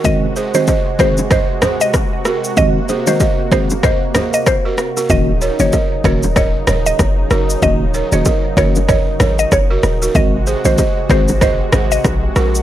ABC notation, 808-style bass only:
X:1
M:4/4
L:1/16
Q:"Swing 16ths" 1/4=95
K:Abmix
V:1 name="808-style bass" clef=bass
z16 | z16 | E,,,3 G,,, z2 E,,,4 E,,,2 G,,,2 G,,,2 | E,,,3 E,,, z2 G,,,4 A,,,2 G,,,2 E,,,2 |
A,,,3 B,,, z2 A,,,4 A,,,2 B,,,2 B,,,2 |]